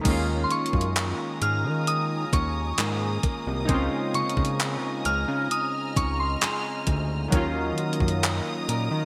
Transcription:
Already playing: A3 D#4 F#4
0.01 D#3 G#3, kick, closed hi-hat, crash
0.05 D#2 A#3 C#4 D#5 G#5 A#5 D#6
0.10 F4
0.44 C6
0.51 C#4 C#6, closed hi-hat
0.66 closed hi-hat
0.73 F#2, kick
0.81 closed hi-hat
0.96 clap, closed hi-hat
1.41 G#2 G#4 F6, closed hi-hat
1.65 D#3
1.87 D#6, closed hi-hat
2.32 D#2 C#4 C#6, kick, closed hi-hat
2.78 G#2 A#3 C#4 G#4, clap, closed hi-hat
3.23 A#3, kick, closed hi-hat
3.47 C2
3.65 C#3 G#3 D#4 G#5 A#5, kick, closed hi-hat
3.69 C#2 C4 C#4
3.74 F4
4.14 C#3 D#4 C#6, closed hi-hat
4.29 closed hi-hat
4.37 C#3, kick
4.45 closed hi-hat
4.60 clap, closed hi-hat
5.05 C#2 G#4 F6, closed hi-hat
5.28 C#3
5.50 D#6 F6, closed hi-hat
5.96 C#2 D#4 C#6, kick, closed hi-hat
6.20 C6
6.41 C4 D#4 G#4, clap, closed hi-hat
6.87 D2 C4, kick, closed hi-hat
7.28 D#3 F#3
7.32 D#2 A#3 C#4 A#5 D#6, kick, closed hi-hat
7.37 F4
7.78 F#4, closed hi-hat
7.93 closed hi-hat
8.00 F#2, kick
8.08 closed hi-hat
8.23 clap, closed hi-hat
8.68 A#2 A#4, closed hi-hat
8.91 D#3

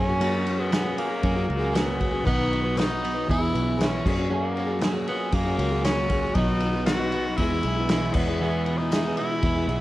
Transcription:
Already playing: F#2 F#3 A#3 C#4 G#4
0.07 C#4 F#4 G#4
0.20 F#3 A#3 C#4 F#4 G#4, ride
0.45 A#3 C#4 G#4, ride
0.58 B3 C#4 F#4 G#4
0.70 F#3 A#3 C#4 F#4 G#4, snare, ride, tambourine
0.84 C#4 F#4 G#4
0.97 F#3 A#3 C#4 G#4, ride
1.09 C#4 F#4 G#4
1.22 F#2 F#3 A#3 C#4 G#4, kick, ride
1.35 C#4 F#4 G#4
1.46 C#2 A#3 C#4 F#4 G#4, ride
1.51 A#3
1.59 C#4 F#4 G#4
1.73 F#3 A#3 B3 C#4 F#4 G#4, snare, ride, tambourine
1.98 A#3 C#4 F#4 G#4, kick, ride
2.03 A#3 C#4
2.11 C#4 F#4 G#4
2.23 B2 D#3 F#3 B3 D#4 B4
2.27 B1 F#3 B3 D#4 F#4, kick, crash
2.51 B3 D#4 F#4, ride
2.62 F#3 B3 D#4 B4
2.75 B2 D#3 F#3 B3 D#4 B4, ride, tambourine
2.80 F#4, snare
2.87 F#3 B3 D#4 B4
3.03 B2 F#3 B3 D#4 F#4, ride
3.14 F#3 B3 D#4 B4
3.26 E2 B2 E3 G#3 B3 E4 G#4, kick
3.31 B3 E4 G#4, ride
3.39 B3 E4 G#4
3.52 B1 G#3 B3 E4 G#4, ride
3.56 E3 B3
3.77 E2 E3 G#3 B3 E4 G#4, ride, tambourine
3.81 B2 E3 B3 C#4 E4 G#4, snare
4.03 F#2 A#3 C#4 F#4 G#4, kick, crash
4.08 F#3 A#3
4.16 C#4 F#4 G#4
4.29 F#3 A#3 C#4 F#4 G#4
4.33 A#3 G#4
4.56 A#3 C#4 G#4, ride
4.67 C#4 F#4 G#4
4.79 F#3 A#3 C#4 F#4 G#4, snare, ride, tambourine
4.84 C#4 G#4
4.92 C#4 F#4 G#4
5.07 F#3 A#3 B3 C#4 G#4, ride
5.31 F#2 F#3 A#3 C#4 G#4, kick, ride
5.44 C#4 F#4 G#4
5.57 C#2 A#3 C#4 F#4 G#4, ride
5.71 C#4 F#4 G#4
5.84 F#3 A#3 C#4 F#4 G#4, snare, ride, tambourine
6.08 A#3 C#4 F#4 G#4, kick, ride
6.13 A#3
6.23 C#4 F#4 G#4
6.34 B1 B2 D#3 F#3 B3 D#4 B4, kick, ride
6.38 F#4
6.60 B3 D#4 F#4, ride
6.73 F#3 B3 D#4 B4
6.86 B2 D#3 F#3 B3 D#4 F#4 B4, snare, ride, tambourine
6.99 F#3 B3 D#4 B4
7.12 B2 F#3 B3 D#4 F#4, ride
7.25 F#3 B3 D#4 B4
7.37 E2 B2 E3 G#3 B3 E4, kick, ride
7.41 E4 G#4
7.51 B3 E4 G#4
7.63 B1 E3 G#3 B3 E4 G#4, ride
7.76 B3 E4 G#4
7.89 E2 B2 E3 G#3 B3 E4 G#4, snare, ride, tambourine
8.14 E2 B2 E3 G#3 B3 E4, kick, crash
8.18 G#4
8.27 B3 E4 G#4
8.41 E2 B2 E3 G#3 B3 E4 G#4
8.66 E3 G#3 B3 E4, ride
8.78 D#4 E4 G#4
8.82 B3
8.91 E3 G#3 B3 E4 G#4, snare, ride, tambourine
9.04 B3 E4 G#4
9.17 E2 B2 E3 G#3 B3 E4, ride
9.30 B3 E4 G#4
9.43 E2 E3 G#3 B3 E4, kick, ride
9.55 B3 E4 G#4
9.67 B1 G#3 B3 E4 G#4, ride
9.71 E3 G#3

